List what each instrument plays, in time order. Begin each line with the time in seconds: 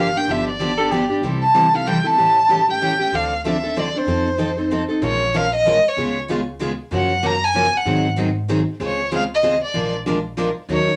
Already playing: violin F5
0.15 steel-string acoustic guitar A#3 D4 G4, violin G5
0.27 upright bass G1, steel-string acoustic guitar D3 F3 B3 D4 G4, violin E5
0.49 violin D5
0.59 steel-string acoustic guitar D3 F3 B3 D4 G4
0.78 steel-string acoustic guitar B3 D4 G4, soprano saxophone A4
0.91 steel-string acoustic guitar D3 F3 B3 D4 G4, soprano saxophone G4
1.09 steel-string acoustic guitar B3 D4 G4
1.22 upright bass C2, steel-string acoustic guitar C3 E3 G3 C4 E4 A4
1.43 violin A5
1.54 steel-string acoustic guitar C3 E3 G3 C4 E4 A4
1.74 steel-string acoustic guitar G3 C4 E4 A4, violin F5
1.86 steel-string acoustic guitar C3 E3 G3 C4 E4 A4, violin G5
2.04 steel-string acoustic guitar G3 C4 E4 A4, violin A5
2.17 upright bass A1, steel-string acoustic guitar C#3 E3 G3 A3 C#4 E4 G4 A4
2.48 steel-string acoustic guitar C#3 E3 G3 A3 C#4 E4 G4 A4
2.68 steel-string acoustic guitar A3 C#4 G4, violin G5
2.82 steel-string acoustic guitar C#3 E3 G3 A3 C#4 E4 G4 A4
2.99 steel-string acoustic guitar A3 C#4 G4
3.12 upright bass D2, steel-string acoustic guitar D3 F3 A3 C4 D4 F4 A4, violin F5
3.44 steel-string acoustic guitar D3 F3 A3 C4 D4 F4 A4, violin E5
3.63 steel-string acoustic guitar C4 D4 A4
3.76 steel-string acoustic guitar D3 F3 A3 C4 D4 F4 A4, violin D5
3.94 steel-string acoustic guitar C4 D4 A4, violin C5
4.07 upright bass F2, steel-string acoustic guitar F3 C4 D#4 A4
4.38 steel-string acoustic guitar F3 C4 D#4 A4
4.57 steel-string acoustic guitar C4 D#4 A4
4.71 steel-string acoustic guitar F3 C4 D#4 A4
4.88 steel-string acoustic guitar C4 D#4 A4
5.02 upright bass A#1, steel-string acoustic guitar F3 G#3 C#4 F4 A#4, violin C#5
5.34 steel-string acoustic guitar F3 G#3 C#4 F4 A#4, violin F5
5.55 violin D#5
5.67 steel-string acoustic guitar F3 G#3 C#4 F4 A#4
5.88 violin C#5
5.97 upright bass C#2, steel-string acoustic guitar C#3 G#3 B3 F4 G#4
6.30 steel-string acoustic guitar C#3 G#3 B3 F4 G#4
6.60 steel-string acoustic guitar C#3 G#3 B3 F4 G#4
6.91 upright bass F#2, steel-string acoustic guitar C#3 F3 F#3 A#3 C#4 F4 F#4 A#4, violin F#5
7.23 steel-string acoustic guitar C#3 F3 F#3 A#3 C#4 F4 F#4 A#4, violin A#5
7.44 violin G#5
7.54 steel-string acoustic guitar C#3 F3 F#3 A#3 C#4 F4 F#4 A#4
7.77 violin F#5
7.85 upright bass G#2, steel-string acoustic guitar D#3 F#3 C4 D#4 G#4
8.17 steel-string acoustic guitar D#3 F#3 C4 D#4 G#4
8.49 steel-string acoustic guitar D#3 F#3 C4 D#4 G#4
8.80 upright bass C#2, steel-string acoustic guitar C#3 G#3 C4 F4 G#4
8.85 violin C#5
9.12 steel-string acoustic guitar C#3 G#3 C4 F4 G#4
9.16 violin F5
9.34 violin D#5
9.43 steel-string acoustic guitar C#3 G#3 C4 F4 G#4
9.64 violin D5
9.74 upright bass A#1, steel-string acoustic guitar F3 G#3 D4 F4 A#4
10.06 steel-string acoustic guitar F3 G#3 D4 F4 A#4
10.37 steel-string acoustic guitar F3 G#3 D4 F4 A#4
10.69 upright bass D#2, steel-string acoustic guitar D#3 F#3 C#4 D#4 A#4
10.73 violin C#5